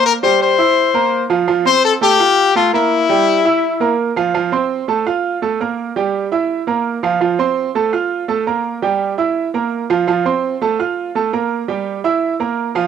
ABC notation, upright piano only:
X:1
M:4/4
L:1/8
Q:1/4=167
K:F
V:1 name="Upright piano"
[B,Bb] [G,Gg]2 [Eee']2 [B,Bb]2 [F,Ff] | [F,Ff] [Ccc']2 [A,Aa] [Fff']2 [A,Aa] [B,Bb]- | [B,Bb] [G,Gg]2 [Eee']2 [B,Bb]2 [F,Ff] | [F,Ff] [Ccc']2 [A,Aa] [Fff']2 [A,Aa] [B,Bb]- |
[B,Bb] [G,Gg]2 [Eee']2 [B,Bb]2 [F,Ff] | [F,Ff] [Ccc']2 [A,Aa] [Fff']2 [A,Aa] [B,Bb]- | [B,Bb] [G,Gg]2 [Eee']2 [B,Bb]2 [F,Ff] | [F,Ff] [Ccc']2 [A,Aa] [Fff']2 [A,Aa] [B,Bb]- |
[B,Bb] [G,Gg]2 [Eee']2 [B,Bb]2 [F,Ff] |]